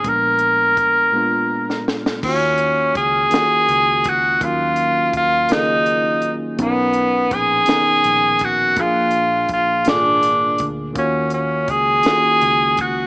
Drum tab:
CC |------------|x-----------|------------|------------|
HH |x-x-x-------|--x-x-x-x-x-|x-x-x-x-x-x-|x-x-x-x-x-x-|
SD |---------ooo|------o-----|------o-----|------o-----|
BD |o---o-------|o---o-----o-|o---o-------|o---o-----o-|

CC |------------|------------|
HH |x-x-x-x-x-x-|x-x-x-x-x-x-|
SD |------o-----|------o-----|
BD |o---o-----o-|o---o-----o-|